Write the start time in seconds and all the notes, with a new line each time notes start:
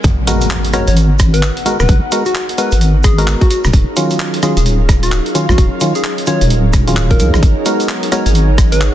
0.04 G#1 B3 D#4 F#4 A#4, kick, closed hi-hat, impact, shaker
0.12 G#4
0.27 G#3 B3 F#4 A#4, closed hi-hat, shaker
0.34 C#5
0.41 closed hi-hat, shaker
0.50 clap
0.65 closed hi-hat
0.73 G#3 B3 F#4 A#4 C#5, cross-stick, closed hi-hat, shaker
0.87 G#1 C#5, closed hi-hat, shaker
0.96 F#5, closed hi-hat, shaker
1.19 kick, cross-stick, closed hi-hat, shaker
1.34 B4, closed hi-hat, shaker
1.43 clap, shaker
1.57 closed hi-hat
1.66 G#3 B3 F#4 A#4, closed hi-hat, shaker
1.80 D#1 B4, cross-stick, shaker
1.88 G#1, kick, closed hi-hat, shaker
2.12 G#3 B3 F#4 A#4, closed hi-hat, shaker
2.26 F#4, closed hi-hat, shaker
2.35 clap, shaker
2.49 closed hi-hat
2.58 G#3 B3 F#4 A#4 B4, closed hi-hat, shaker
2.71 G#1, closed hi-hat, shaker
2.81 closed hi-hat, shaker
3.04 G#4, kick, cross-stick, closed hi-hat, shaker
3.18 G#3 B3 F#4 A#4, closed hi-hat, shaker
3.27 clap, shaker
3.41 F#4, kick, closed hi-hat
3.50 F#3 C#4 F4 F#4, closed hi-hat, shaker
3.64 D#1, cross-stick, shaker
3.73 D#1, kick, closed hi-hat, shaker
3.96 D#3 F#3 C#4 F4, closed hi-hat, shaker
4.10 closed hi-hat, shaker
4.20 clap, shaker
4.34 closed hi-hat
4.43 D#3 F#3 C#4 F4 G#4 F5, cross-stick, closed hi-hat, shaker
4.57 D#1 G#4, closed hi-hat, shaker
4.66 closed hi-hat, shaker
4.89 kick, cross-stick, closed hi-hat, shaker
5.03 F#4, closed hi-hat, shaker
5.12 clap, shaker
5.26 closed hi-hat
5.35 D#3 F#3 C#4 F4, closed hi-hat, shaker
5.49 A#1 F#4, cross-stick, shaker
5.58 D#1, kick, closed hi-hat, shaker
5.81 D#3 F#3 C#4 F4, closed hi-hat, shaker
5.95 G#4, closed hi-hat, shaker
6.04 G#4, clap, shaker
6.18 closed hi-hat
6.26 D#3 F#3 C#4 F4 C#5, closed hi-hat, shaker
6.41 D#1, closed hi-hat, shaker
6.50 closed hi-hat, shaker
6.73 kick, cross-stick, closed hi-hat, shaker
6.87 D#3 F#3 C#4 F4, closed hi-hat, shaker
6.97 clap, shaker
7.11 A#4, kick, closed hi-hat
7.20 C#2 A#4, closed hi-hat, shaker
7.34 A#1, cross-stick, shaker
7.43 G#1 B3 D#4, kick, closed hi-hat, shaker
7.66 G#3 B3 F#4 A#4, closed hi-hat, shaker
7.80 closed hi-hat, shaker
7.89 clap
8.03 closed hi-hat
8.12 G#3 B3 F#4 A#4 C#5, cross-stick, closed hi-hat, shaker
8.26 G#1 C#5, closed hi-hat, shaker
8.35 F#5, closed hi-hat, shaker
8.58 kick, cross-stick, closed hi-hat, shaker
8.72 B4, closed hi-hat, shaker
8.81 clap, shaker